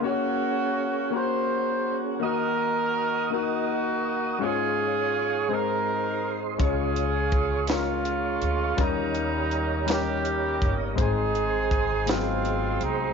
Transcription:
0.00 0.80 A#3 medium
0.00 0.81 C#4 medium
0.00 2.20 C#4 soft
0.00 0.82 F#4 medium
0.00 2.19 G#4 soft
0.00 4.37 F#5 soft
0.04 1.10 A#3 medium
0.04 1.10 C#4 medium
0.04 1.14 F#4 medium
0.04 0.82 C#5 medium
1.10 1.90 A#3 soft
1.10 1.90 C#4 soft
1.10 1.91 F#4 soft
1.10 1.91 A#4 medium
1.15 2.19 F#4 medium
1.15 1.97 C5 medium
2.20 3.27 D#3 soft
2.20 2.99 A#3 medium
2.20 3.00 D#4 medium
2.20 3.00 F#4 medium
2.20 4.39 A#4 medium
2.20 4.39 D#5 soft
2.20 3.01 D#5 medium
2.20 4.39 D#6 medium
2.24 3.28 D#4 medium
2.24 3.28 F#4 medium
2.24 3.29 A#4 medium
3.30 4.09 A#3 medium
3.30 4.38 A#3 medium
3.30 4.10 D#4 soft
3.30 4.38 D#4 medium
3.30 4.10 F#4 soft
3.30 4.11 A#4 medium
3.35 4.43 F#4 medium
4.39 5.46 G#2 medium
4.39 5.18 G#3 medium
4.39 5.19 C#4 medium
4.39 5.47 C#4 medium
4.39 5.20 F4 medium
4.39 5.47 F4 medium
4.39 8.75 G#4 medium
4.39 5.49 C#5 soft
4.39 5.20 C#5 medium
4.39 5.49 F5 soft
4.39 5.49 C#6 medium
4.43 5.52 G#4 medium
5.48 6.56 G#2 medium
5.48 6.28 G#3 medium
5.48 6.28 C4 soft
5.48 6.29 D#4 soft
5.48 6.44 D#4 medium
5.48 6.59 C5 soft
5.48 6.29 C5 medium
5.48 6.59 D#5 soft
5.48 6.58 C6 medium
5.53 6.34 A#4 medium
6.58 8.38 C#2 medium
6.58 7.66 C#3 soft
6.58 7.37 G#3 medium
6.58 7.38 C#4 medium
6.58 7.66 C#4 medium
6.58 7.38 F4 medium
6.58 7.66 F4 medium
6.58 8.77 C#5 soft
6.58 7.39 C#5 medium
6.58 8.77 F5 soft
6.58 8.77 C#6 medium
6.58 kick medium
6.58 closed hi-hat medium
6.62 7.67 G#4 medium
6.96 closed hi-hat soft
7.32 kick medium
7.32 closed hi-hat soft
7.67 8.47 G#3 medium
7.67 8.76 G#3 medium
7.67 8.48 C#4 soft
7.67 8.76 C#4 medium
7.67 8.48 F4 soft
7.67 snare medium
7.67 closed hi-hat medium
7.72 8.81 F4 medium
7.72 8.49 A#4 medium
8.05 closed hi-hat soft
8.42 8.76 D2 medium
8.42 closed hi-hat soft
8.77 10.64 D#2 medium
8.77 9.84 D#3 medium
8.77 9.56 G3 medium
8.77 9.85 A#3 medium
8.77 9.57 C#4 medium
8.77 9.58 D#4 medium
8.77 10.96 G4 medium
8.77 9.58 A#4 medium
8.77 10.96 C#5 soft
8.77 13.13 D#5 soft
8.77 10.96 A#5 medium
8.77 kick medium
8.77 closed hi-hat medium
8.81 9.86 G3 medium
8.81 9.90 D#4 medium
9.15 closed hi-hat soft
9.51 closed hi-hat soft
9.86 10.66 G3 medium
9.86 10.66 C#4 soft
9.86 10.67 D#4 soft
9.86 10.67 A#4 medium
9.86 closed hi-hat medium
9.90 10.95 A#3 medium
9.90 10.95 C#4 medium
9.90 10.72 G4 medium
9.90 snare medium
10.25 closed hi-hat soft
10.62 10.95 G1 medium
10.62 kick medium
10.62 closed hi-hat soft
10.96 12.77 G#1 medium
10.96 12.03 G#2 soft
10.96 11.75 G#3 medium
10.96 11.76 C4 medium
10.96 11.77 D#4 medium
10.96 13.13 G#4 medium
10.96 13.13 C5 medium
10.96 11.77 C5 medium
10.96 13.13 C6 medium
10.96 kick medium
10.96 closed hi-hat medium
11.00 12.05 C4 medium
11.00 12.05 D#4 medium
11.00 12.05 G#4 medium
11.35 closed hi-hat soft
11.71 kick medium
11.71 closed hi-hat soft
12.06 12.87 F#3 medium
12.06 12.85 G#3 medium
12.06 13.13 G#3 medium
12.06 12.14 B3 soft
12.06 13.13 C4 medium
12.06 12.86 D#4 medium
12.06 12.82 F4 medium
12.06 snare medium
12.06 closed hi-hat medium
12.13 12.89 C4 soft
12.45 closed hi-hat soft
12.81 13.13 C2 medium
12.81 13.13 D#4 medium
12.81 closed hi-hat soft

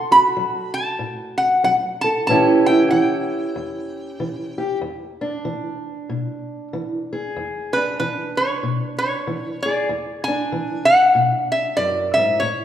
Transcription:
0.00 0.31 D3 medium
0.00 2.04 A4 medium
0.00 0.11 C6 loud
0.11 2.24 F#4 medium
0.11 0.73 B5 loud
0.37 0.95 F#3 medium
0.74 1.40 A5 loud
0.99 1.58 A2 medium
1.38 1.63 F#5 medium
1.64 2.22 F#3 medium
1.64 1.75 F#5 medium
2.01 2.25 A4 medium
2.01 2.08 A5 medium
2.27 2.86 A2 medium
2.27 2.92 E3 medium
2.27 4.80 C#4 medium
2.27 2.68 E4 medium
2.27 2.66 A5 medium
2.31 4.57 G4 medium
2.66 5.21 E4 medium
2.66 2.89 G5 medium
2.91 3.50 E3 medium
2.91 4.78 G5 medium
3.56 4.14 E2 medium
4.20 4.78 E3 medium
4.58 4.79 G4 medium
4.81 5.40 E2 medium
5.21 7.39 D4 medium
5.45 6.04 E3 medium
6.09 6.68 B2 medium
6.73 7.31 E3 medium
7.13 7.79 G#4 medium
7.36 7.94 E2 medium
7.73 9.87 D4 medium
7.73 7.97 B4 medium
8.00 8.58 E3 medium
8.00 8.37 B4 medium
8.37 8.97 C#5 medium
8.63 9.21 B2 medium
8.98 9.62 C#5 medium
9.27 9.85 E3 medium
9.63 9.87 G#4 medium
9.63 10.28 D5 medium
9.89 10.47 E2 medium
10.24 10.85 G#5 loud
10.28 12.39 D4 medium
10.52 11.10 E3 medium
10.85 11.47 F#5 loud
11.15 11.73 B2 medium
11.52 11.78 E5 medium
11.77 12.16 F#2 medium
11.77 12.17 D5 medium
12.14 12.42 G#2 medium
12.14 12.41 E5 medium
12.40 12.65 A2 medium
12.40 12.65 C#5 medium

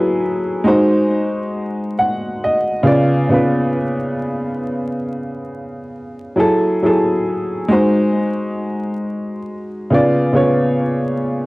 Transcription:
0.00 0.66 F#3 medium
0.00 0.66 E4 medium
0.00 0.66 G#4 medium
0.00 0.65 A4 medium
0.00 0.67 B4 medium
0.64 2.31 G#3 medium
0.64 2.31 D#4 medium
0.64 2.32 F#4 medium
0.64 2.33 C5 loud
1.99 2.39 F#5 medium
2.44 2.83 D#5 medium
2.83 3.26 C#3 medium
2.83 3.26 B3 medium
2.83 3.27 F4 medium
2.83 3.27 D5 loud
3.29 4.96 C#3 medium
3.29 4.96 B3 medium
3.29 4.97 F4 medium
3.29 4.98 B4 medium
6.36 6.78 F#3 medium
6.36 6.79 E4 medium
6.36 6.80 G#4 medium
6.40 6.80 A4 loud
6.82 7.70 F#3 medium
6.82 7.71 E4 medium
6.82 7.72 G#4 medium
6.86 7.72 A4 medium
7.68 9.36 G#3 medium
7.68 9.36 D#4 medium
7.68 9.37 F#4 medium
7.73 9.38 C5 medium
9.90 10.31 C#3 medium
9.90 10.32 B3 medium
9.90 10.33 F4 medium
9.90 10.34 D5 medium
10.33 11.46 C#3 medium
10.33 11.46 B3 medium
10.33 11.46 F4 medium
10.33 11.46 C#5 medium

